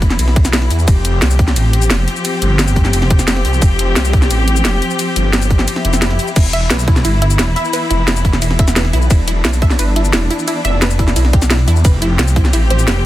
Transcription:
Already playing: F1 E3 B3 E4
0.02 kick, open hi-hat
0.10 snare, shaker
0.19 B1, closed hi-hat, ride, shaker
0.28 snare
0.36 kick, closed hi-hat
0.45 snare, shaker
0.53 snare, closed hi-hat, ride, shaker
0.62 snare
0.70 E2, open hi-hat, shaker
0.79 shaker
0.88 F1 F3 C4 G4, kick, closed hi-hat, ride, shaker
1.05 closed hi-hat, shaker
1.22 C2, snare, closed hi-hat, ride, shaker
1.31 shaker
1.39 kick, open hi-hat
1.48 snare, shaker
1.56 A1, closed hi-hat, ride, shaker
1.73 closed hi-hat
1.82 shaker
1.90 F1, snare, closed hi-hat, ride, shaker
2.08 open hi-hat
2.16 shaker
2.25 closed hi-hat, ride, shaker
2.42 G1, closed hi-hat, shaker
2.59 snare, closed hi-hat, ride, shaker
2.68 shaker
2.76 kick, open hi-hat
2.85 snare, shaker
2.93 F1, closed hi-hat, ride, shaker
3.02 snare
3.10 kick, closed hi-hat
3.19 snare, shaker
3.28 snare, closed hi-hat, ride, shaker
3.36 snare
3.45 C2, open hi-hat
3.53 shaker
3.62 F1, kick, closed hi-hat, ride, shaker
3.79 closed hi-hat, shaker
3.96 C2, snare, closed hi-hat, ride, shaker
4.05 shaker
4.13 kick, open hi-hat
4.22 snare, shaker
4.31 A1, closed hi-hat, ride, shaker
4.48 closed hi-hat
4.56 shaker
4.65 F1, snare, closed hi-hat, ride, shaker
4.82 open hi-hat
4.91 shaker
4.99 closed hi-hat, ride, shaker
5.16 G1, closed hi-hat, shaker
5.33 snare, closed hi-hat, ride, shaker
5.42 shaker
5.50 kick, open hi-hat
5.59 snare, shaker
5.68 closed hi-hat, ride, swell, shaker
5.76 snare
5.85 F1, closed hi-hat
5.93 snare, shaker
6.02 snare, closed hi-hat, ride, shaker
6.10 snare
6.19 open hi-hat, shaker
6.28 shaker
6.36 E1 E3 B3 E4, kick, closed hi-hat, crash, ride, shaker
6.53 E5, closed hi-hat, shaker
6.70 B1 B4, snare, closed hi-hat, ride, shaker
6.79 shaker
6.88 E4, kick, open hi-hat
6.96 snare, shaker
7.05 G1 E4, closed hi-hat, ride, shaker
7.22 E4, closed hi-hat
7.30 shaker
7.39 E1 E4, snare, closed hi-hat, ride, shaker
7.56 E5, open hi-hat
7.65 shaker
7.73 B4, closed hi-hat, ride, shaker
7.91 F1 E4, closed hi-hat, shaker
8.08 E4, snare, closed hi-hat, ride, shaker
8.16 shaker
8.25 E4, kick, open hi-hat
8.33 snare, shaker
8.42 E1 E4, closed hi-hat, ride, shaker
8.51 snare
8.59 E5, kick, closed hi-hat
8.68 snare, shaker
8.76 B4, snare, closed hi-hat, ride, shaker
8.85 snare
8.93 B1 E4, open hi-hat
9.02 shaker
9.11 E1 D4 E4, kick, closed hi-hat, ride, shaker
9.28 E4, closed hi-hat, shaker
9.45 B1 E4, snare, closed hi-hat, ride, shaker
9.53 shaker
9.62 E5, kick, open hi-hat
9.70 snare, shaker
9.79 G1 B4, closed hi-hat, ride, shaker
9.96 E4, closed hi-hat
10.05 shaker
10.13 E1 E4, snare, closed hi-hat, ride, shaker
10.30 E4, open hi-hat
10.39 shaker
10.48 E4, closed hi-hat, ride, shaker
10.65 F1 E5, closed hi-hat, shaker
10.82 B4, snare, closed hi-hat, ride, shaker
10.90 shaker
10.99 E4, kick, open hi-hat
11.08 snare, shaker
11.16 B1 E4, closed hi-hat, ride, shaker
11.25 snare
11.33 G4, kick, closed hi-hat
11.42 snare, shaker
11.50 E4, snare, closed hi-hat, ride, shaker
11.59 snare
11.68 E2 E4, open hi-hat, shaker
11.76 shaker
11.85 F1 F3 C4 G4 B4, kick, closed hi-hat, ride, shaker
12.02 E4, closed hi-hat, shaker
12.19 C2 F4, snare, closed hi-hat, ride, shaker
12.28 shaker
12.36 E4, kick, open hi-hat
12.45 snare, shaker
12.53 A1 E4, closed hi-hat, ride, shaker
12.70 C5, closed hi-hat
12.79 shaker
12.88 F1 B4, snare, closed hi-hat, ride, shaker

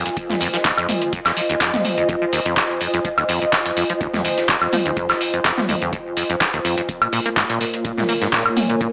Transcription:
Already playing: F4 A#4 C5 D#5 G#5
0.05 F2, closed hi-hat, cabasa
0.17 kick, closed hi-hat, cabasa, shaker
0.30 F2, snare, mid tom
0.40 F2, open hi-hat, cabasa, shaker
0.54 F3, snare, closed hi-hat, cabasa
0.65 D#2, kick, snare, clap, closed hi-hat, cabasa, shaker
0.78 F2, high woodblock
0.89 F2, mid tom, open hi-hat, cabasa, shaker
1.02 closed hi-hat, cabasa
1.13 F2, kick, closed hi-hat, cabasa, shaker
1.26 F2, snare, clap, closed hi-hat, high woodblock
1.37 F3, open hi-hat, cabasa, shaker
1.49 D#2, closed hi-hat, cabasa
1.61 F2, kick, snare, clap, closed hi-hat, cabasa, shaker
1.74 F2, snare, mid tom
1.85 mid tom, open hi-hat, cabasa, shaker
1.98 F2, closed hi-hat, cabasa
2.09 F2, kick, closed hi-hat, cabasa, shaker
2.22 F3
2.32 D#2, open hi-hat, cabasa, shaker
2.45 F2, closed hi-hat, cabasa
2.56 kick, snare, clap, closed hi-hat, cabasa, shaker
2.80 F2, open hi-hat, cabasa, shaker
2.94 F2, closed hi-hat, cabasa
3.04 F3, kick, closed hi-hat, cabasa, shaker
3.18 D#2, closed hi-hat, high woodblock
3.29 F2, open hi-hat, cabasa, shaker
3.42 F2, closed hi-hat, cabasa
3.52 kick, snare, clap, closed hi-hat, cabasa, shaker
3.66 F2, closed hi-hat
3.77 F2, open hi-hat, cabasa, shaker
3.90 F3, closed hi-hat, cabasa
4.01 D#2, kick, closed hi-hat, cabasa, shaker
4.14 F2, snare, mid tom
4.25 F2, open hi-hat, cabasa, shaker
4.38 snare, closed hi-hat, cabasa
4.49 F2, kick, snare, clap, closed hi-hat, cabasa, shaker
4.62 F2, high woodblock
4.72 F3, mid tom, open hi-hat, cabasa, shaker
4.85 D#2, closed hi-hat, cabasa
4.97 F2, kick, closed hi-hat, cabasa, shaker
5.10 F2, snare, clap, closed hi-hat, high woodblock
5.21 open hi-hat, cabasa, shaker
5.33 F2, closed hi-hat, cabasa
5.45 F2, kick, snare, clap, closed hi-hat, cabasa, shaker
5.58 F3, snare, mid tom
5.69 D#2, mid tom, open hi-hat, cabasa, shaker
5.81 F2, closed hi-hat, cabasa
5.93 F2, kick, closed hi-hat, cabasa, shaker
6.17 F2, open hi-hat, cabasa, shaker
6.30 F2, closed hi-hat, cabasa
6.41 F3, kick, snare, clap, closed hi-hat, cabasa, shaker
6.54 D#2, closed hi-hat
6.65 F2, open hi-hat, cabasa, shaker
6.78 F2, closed hi-hat, cabasa
6.89 A#3 F4 A#4, kick, closed hi-hat, cabasa, shaker
7.02 A#2, closed hi-hat, high woodblock
7.12 A#2 A#4 C#5, open hi-hat, cabasa, shaker
7.26 A#3, closed hi-hat, cabasa
7.37 G#2, kick, snare, clap, closed hi-hat, cabasa, shaker
7.50 A#2, closed hi-hat
7.61 A#2, open hi-hat, cabasa, shaker
7.69 G#5
7.74 closed hi-hat, cabasa
7.85 A#2, kick, closed hi-hat, cabasa, shaker
7.98 A#2, snare, mid tom
8.09 A#3, open hi-hat, cabasa, shaker
8.22 G#2, snare, closed hi-hat, cabasa
8.32 A#2, kick, snare, clap, closed hi-hat, cabasa, shaker
8.46 A#2, high woodblock
8.57 mid tom, open hi-hat, cabasa, shaker
8.70 A#2, closed hi-hat, cabasa
8.81 A#2, kick, closed hi-hat, cabasa, shaker

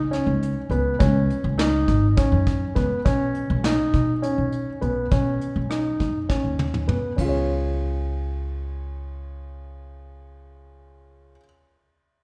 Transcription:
Already playing: C#3
0.11 C#4, snare, closed hi-hat
0.26 C#2
0.43 closed hi-hat
0.70 C#2 B3, closed hi-hat
0.99 C#2 C#4, kick, closed hi-hat
1.30 closed hi-hat
1.44 C#2
1.58 D#4, snare, closed hi-hat
1.88 G#1, kick, closed hi-hat
2.17 C#4, kick, closed hi-hat
2.32 F#2
2.47 kick, closed hi-hat
2.75 C#2 B3, kick, closed hi-hat
3.05 B1 C#4, kick, closed hi-hat
3.35 closed hi-hat
3.50 B1
3.64 D#4, snare, closed hi-hat
3.94 B2, kick, closed hi-hat
4.22 C#4, closed hi-hat
4.38 B1
4.52 closed hi-hat
4.81 B1 B3, closed hi-hat
5.11 B1 C#4, kick, closed hi-hat
5.41 closed hi-hat
5.56 B1
5.70 D#4, cross-stick, closed hi-hat
6.00 F#2, kick, closed hi-hat
6.29 C#4, kick, snare
6.45 D#2
6.59 high tom
6.74 mid tom
6.88 B2 B3, mid tom
7.16 C#2 C#4, kick, ride
7.20 F4 G#4
7.28 C#5

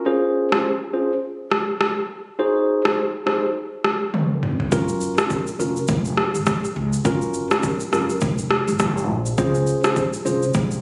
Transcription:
0.06 C#4 F4 G#4 C5
0.52 C#4 F4 G#4 C5, cross-stick
0.93 C#4 F4 G#4 C5
1.52 cross-stick
1.81 cross-stick
2.39 D#4 F#4 G#4 C5
2.85 D#4 F#4 G#4 C5, cross-stick
3.26 D#4 F#4 G#4 C5, cross-stick
3.84 cross-stick
4.14 high tom
4.43 mid tom
4.60 floor tom
4.72 F#1 C#4 F4 F#4 A#4, kick, shaker
4.88 shaker
5.01 shaker
5.18 C#4 F4 F#4 A#4, cross-stick, shaker
5.30 kick, shaker
5.47 shaker
5.59 F1 C#4 F4 F#4 A#4, shaker
5.76 shaker
5.88 F1, kick, shaker
6.05 shaker
6.17 cross-stick
6.35 G#1, shaker
6.46 kick, cross-stick, shaker
6.65 shaker
6.76 C#2
6.93 shaker
7.05 F#1 C#4 F4 F#4 A#4, kick, shaker
7.22 shaker
7.34 shaker
7.51 C#4 F4 F#4 A#4, cross-stick, shaker
7.63 kick, shaker
7.80 shaker
7.92 F#1 C#4 F4 F#4 A#4, cross-stick, shaker
8.09 shaker
8.21 F1, kick, shaker
8.38 shaker
8.51 cross-stick
8.68 G#1, shaker
8.79 F#1, kick, cross-stick, shaker
8.98 shaker
9.09 A#1
9.26 shaker
9.38 C#2 C#4 F4 G#4 C5, kick, shaker
9.54 shaker
9.67 shaker
9.84 C#4 F4 G#4 C5, cross-stick, shaker
9.96 kick, shaker
10.13 shaker
10.25 C2 C#4 F4 G#4 C5, shaker
10.43 shaker
10.54 C2, kick, shaker
10.71 shaker

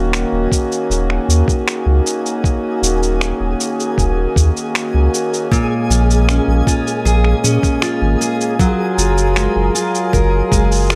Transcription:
Already playing: D#1 D#3 A#3 C#4 F#4 G#4 G#5
0.13 finger snap, shaker
0.32 D#1
0.52 kick, shaker
0.72 shaker
0.90 D#1, shaker
1.10 finger snap
1.28 D#2, shaker
1.48 kick, shaker
1.68 finger snap, shaker
1.86 C#2
2.07 shaker
2.26 shaker
2.44 kick, shaker
2.82 D#1, shaker
3.03 shaker
3.21 finger snap, shaker
3.40 D#1
3.60 shaker
3.80 shaker
3.98 D#1, kick, shaker
4.36 D#2, kick, shaker
4.57 shaker
4.75 finger snap, shaker
4.94 C#2
5.14 shaker
5.34 shaker
5.51 A#2 G#3, kick, shaker
5.90 A#1 F4, shaker
6.10 shaker
6.29 C#4, finger snap, shaker
6.48 A#1
6.67 F4, kick, shaker
6.87 shaker
7.05 A#1 G#4, shaker
7.24 finger snap
7.44 A#2 C#4, shaker
7.63 kick, shaker
7.82 F4, finger snap, shaker
8.02 G#1
8.21 G#4, shaker
8.41 shaker
8.59 F#3 F4 G#4 A#4, kick, shaker
8.98 F#1 F4, shaker
9.18 shaker
9.36 G#3, finger snap, shaker
9.56 F#1
9.75 F4, shaker
9.95 shaker
10.13 F#1 A#4, kick, shaker
10.52 F#1 G#3, kick, shaker
10.72 shaker
10.74 shaker
10.76 shaker
10.79 shaker
10.82 shaker
10.84 shaker
10.86 shaker
10.89 F4, finger snap, shaker
10.91 shaker

